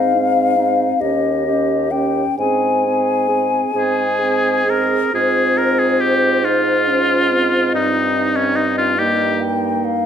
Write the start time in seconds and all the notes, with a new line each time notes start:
Already playing: G#2 C4 D#4 F5
0.15 C4 D#4
0.58 C4 D#4
1.01 D#2 C#4 G4 D#5
1.47 C#4 G4
1.91 C#4 G4 G5
2.38 G#2 C4 G#4 G#5
2.85 C4 G#4
3.29 C4 G#4
3.75 G#2 C4 G#4
4.21 C4 G#4
4.67 C4 G#4 A#4
5.13 G#2 C4 F4 G#4 C5
5.58 A#4
5.79 G#4
6.01 G4
6.44 D#4 F4 C5
6.88 C#4
7.31 C4
7.71 G2 D#4 D#5
8.36 C#4
8.56 D#4
8.78 F4
8.99 A#3 D#4 G4 D#5
9.41 G5
9.85 F5